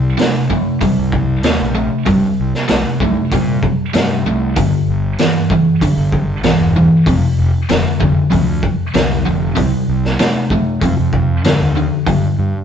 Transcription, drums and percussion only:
0.19 snare, open hi-hat
0.50 kick
0.81 kick, open hi-hat
1.12 kick
1.43 snare, open hi-hat
2.06 kick, open hi-hat
2.54 snare
2.68 snare, open hi-hat
3.00 kick
3.32 kick, open hi-hat
3.63 kick
3.94 snare, open hi-hat
4.56 kick, open hi-hat
5.18 snare, open hi-hat
5.50 kick
5.81 kick, open hi-hat
6.12 kick
6.43 snare, open hi-hat
7.06 kick, open hi-hat
7.69 snare, open hi-hat
8.00 kick
8.32 kick, open hi-hat
8.63 kick
8.94 snare, open hi-hat
9.56 kick, open hi-hat
10.05 snare
10.19 snare, open hi-hat
10.50 kick
10.81 kick, open hi-hat
11.13 kick
11.44 snare, open hi-hat
12.06 kick, open hi-hat

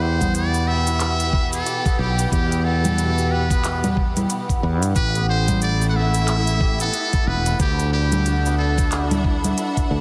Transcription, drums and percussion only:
0.21 kick, closed hi-hat, low conga, cabasa
0.35 closed hi-hat, cabasa
0.54 cabasa
0.87 closed hi-hat, cabasa
1.00 clap, closed hi-hat, cabasa
1.20 closed hi-hat, cabasa
1.33 kick
1.53 closed hi-hat, cabasa
1.67 closed hi-hat, cabasa
1.86 kick, closed hi-hat, cabasa
2.19 closed hi-hat, cabasa
2.32 kick, closed hi-hat, cabasa
2.52 closed hi-hat, cabasa
2.85 closed hi-hat, low conga, cabasa
2.98 closed hi-hat, cabasa
3.18 cabasa
3.51 kick, closed hi-hat, cabasa
3.64 clap, closed hi-hat, cabasa
3.84 closed hi-hat, low conga, cabasa
3.97 kick
4.17 closed hi-hat, low conga, cabasa
4.30 closed hi-hat, cabasa
4.49 kick, closed hi-hat, cabasa
4.83 closed hi-hat, cabasa
4.96 kick, closed hi-hat, cabasa
5.15 closed hi-hat, cabasa
5.48 kick, closed hi-hat, low conga, cabasa
5.62 closed hi-hat, cabasa
5.82 cabasa
6.14 closed hi-hat, cabasa
6.28 clap, closed hi-hat, cabasa
6.47 closed hi-hat, cabasa
6.61 kick
6.80 closed hi-hat, cabasa
6.94 closed hi-hat, cabasa
7.13 kick, closed hi-hat, cabasa
7.46 closed hi-hat, cabasa
7.60 kick, closed hi-hat, cabasa
7.80 closed hi-hat, cabasa
8.12 closed hi-hat, low conga, cabasa
8.26 closed hi-hat, cabasa
8.46 cabasa
8.78 kick, closed hi-hat, cabasa
8.92 clap, closed hi-hat, cabasa
9.11 closed hi-hat, low conga, cabasa
9.24 kick
9.44 closed hi-hat, low conga, cabasa
9.58 closed hi-hat, cabasa
9.77 kick, closed hi-hat, cabasa

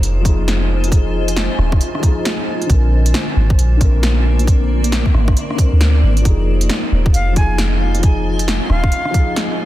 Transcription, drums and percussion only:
0.03 closed hi-hat
0.25 kick, cross-stick, closed hi-hat
0.48 snare, closed hi-hat
0.84 closed hi-hat
0.92 kick, closed hi-hat
1.28 closed hi-hat
1.36 snare, closed hi-hat
1.59 cross-stick
1.72 kick, cross-stick
1.81 closed hi-hat
1.95 cross-stick
2.03 kick, closed hi-hat
2.25 snare, closed hi-hat
2.62 closed hi-hat
2.70 kick, closed hi-hat
3.06 closed hi-hat
3.14 snare, closed hi-hat
3.50 kick
3.59 closed hi-hat
3.81 kick, cross-stick, closed hi-hat
4.03 snare, closed hi-hat
4.39 closed hi-hat
4.47 kick, closed hi-hat
4.84 closed hi-hat
4.92 snare, closed hi-hat
5.06 kick
5.14 cross-stick
5.28 kick, cross-stick
5.37 closed hi-hat
5.51 cross-stick
5.58 kick, closed hi-hat
5.81 snare, closed hi-hat
6.17 closed hi-hat
6.25 kick, closed hi-hat
6.61 closed hi-hat
6.69 snare, closed hi-hat
7.06 kick
7.14 closed hi-hat
7.36 kick, cross-stick, closed hi-hat
7.58 snare, closed hi-hat
7.95 closed hi-hat
8.03 kick, closed hi-hat
8.39 closed hi-hat
8.48 snare, closed hi-hat
8.70 cross-stick
8.84 kick, cross-stick
8.92 closed hi-hat
9.05 cross-stick
9.14 kick, closed hi-hat
9.36 snare, closed hi-hat

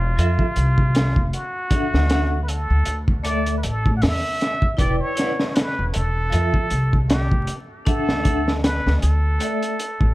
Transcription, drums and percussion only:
0.19 closed hi-hat
0.39 kick
0.56 closed hi-hat
0.78 kick
0.95 snare, closed hi-hat
1.16 kick
1.33 closed hi-hat
1.71 kick, closed hi-hat
1.94 snare
2.10 snare, closed hi-hat
2.48 closed hi-hat
2.85 closed hi-hat
3.08 kick
3.24 closed hi-hat
3.46 closed hi-hat
3.63 closed hi-hat
3.86 kick
4.02 snare, open hi-hat
4.41 snare, closed hi-hat
4.62 kick
4.79 kick, closed hi-hat
5.17 snare, closed hi-hat
5.39 snare
5.56 snare, closed hi-hat
5.94 closed hi-hat
6.32 closed hi-hat
6.54 kick
6.70 closed hi-hat
6.93 kick
7.10 snare, closed hi-hat
7.32 kick
7.47 closed hi-hat
7.86 kick, closed hi-hat
8.09 snare
8.25 kick, closed hi-hat
8.48 snare
8.64 snare, closed hi-hat
8.87 snare
9.02 closed hi-hat
9.40 closed hi-hat
9.63 closed hi-hat
9.79 closed hi-hat
10.01 kick

